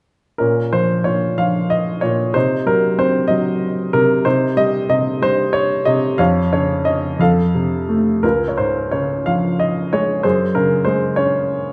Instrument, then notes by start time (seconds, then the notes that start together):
upright piano
0.38 A#2 C#4 A#4
0.73 F3 C5
1.04 A#2 C#5
1.38 F3 F5
1.70 D#5
2.01 A#2 C#5
2.34 C3 D#4 C5
2.66 F#3 A#4
2.99 C4 C5
3.28 F#3 D#5
3.93 C3 A#4
4.25 C3 D#4 C5
4.57 G3 D#5
4.89 C3 D#5
5.22 G3 C5
5.53 C#5
5.85 C3 D#5
6.18 F2 C#5 F5
6.53 C#3 C#5
6.85 C#4 D#5
7.19 F2 A4 F5
7.55 C3
7.89 A3
8.23 C#2 F4 A#4
8.48 C#5
8.58 G#2 C5
8.91 C#3 C#5
9.26 F3 F5
9.59 D#5
9.93 G#3 C#5
10.23 F#2 G#4 C5
10.55 C#3 A#4
10.85 G#3 C5
11.16 C#4 C#5